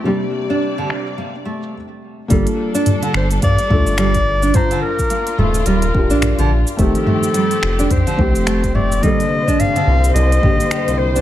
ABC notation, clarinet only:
X:1
M:4/4
L:1/8
Q:"Swing 16ths" 1/4=107
K:Gm
V:1 name="Clarinet"
z8 | z3 c d2 d2 | c B2 A B3 z | A4 c3 d |
e2 f2 e3 c |]